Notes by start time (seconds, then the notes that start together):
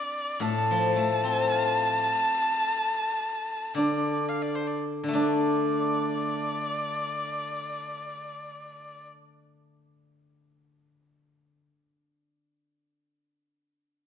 Already playing: D4 D5
0.40 A2 A4 A5
0.71 F3
0.96 A3
1.24 C4
1.52 F4
3.75 D3 D4 D5
4.29 F5
4.43 D5
4.55 C5
4.67 D5
5.04 D3
5.08 A3
5.13 D4 D5